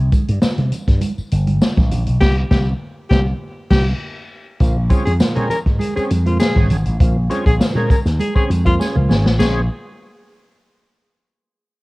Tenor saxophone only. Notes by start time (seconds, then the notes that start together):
2.20 G4
2.51 G4
3.10 G4
3.70 G4
4.90 F4
5.05 G#4
5.35 A#4
5.50 A#4
5.79 G#4
5.96 G#4
6.27 F4
6.39 G#4
7.29 F4
7.46 G#4
7.76 A#4
7.91 A#4
8.20 G#4
8.36 G#4
8.66 F4
9.39 G#4